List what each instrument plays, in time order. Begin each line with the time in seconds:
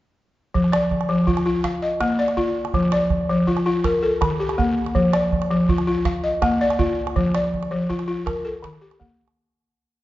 0.54 balafon F3, calabash thump
0.64 calabash click
0.72 balafon D5, calabash click
0.91 calabash thump, calabash click
1.01 calabash click
1.09 balafon F3
1.27 balafon F4, calabash thump
1.37 calabash click
1.46 balafon F4
1.64 balafon F5, calabash thump, calabash click
1.82 balafon D#5
2.00 balafon A#3, calabash thump, calabash click
2.10 calabash click
2.19 balafon D5
2.28 calabash click
2.37 balafon F4, calabash thump, calabash click
2.65 calabash click
2.74 balafon F3, calabash thump
2.83 calabash click
2.92 balafon D5, calabash click
3.10 calabash thump, calabash click
3.29 balafon F3
3.47 balafon F4, calabash thump
3.57 calabash click
3.66 balafon F4
3.84 balafon A#4, calabash thump, calabash click
4.03 balafon A4
4.21 balafon D#3, calabash thump, calabash click
4.31 calabash click
4.40 balafon G4
4.49 calabash click
4.58 balafon A#3, calabash thump, calabash click
4.86 calabash click
4.95 balafon F3, calabash thump
5.05 calabash click
5.13 balafon D5, calabash click
5.33 calabash thump, calabash click
5.42 calabash click
5.51 balafon F3
5.69 balafon F4, calabash thump
5.78 calabash click
5.87 balafon F4
6.05 balafon F5, calabash thump, calabash click
6.24 balafon D#5
6.42 balafon A#3, calabash thump, calabash click
6.52 calabash click
6.61 balafon D5
6.70 calabash click
6.79 balafon F4, calabash thump, calabash click
7.07 calabash click
7.16 balafon F3, calabash thump, calabash click
7.26 calabash click
7.35 balafon D5, calabash click
7.54 calabash thump
7.63 calabash click
7.71 balafon F3
7.90 balafon F4, calabash thump, calabash click
7.99 calabash click
8.08 balafon F4
8.26 balafon A#4, calabash thump, calabash click
8.45 balafon A4
8.54 calabash click
8.62 balafon D#3, calabash thump, calabash click
8.73 calabash click
8.81 balafon G4, calabash click
8.91 calabash click
9.00 balafon A#3, calabash thump
9.28 calabash click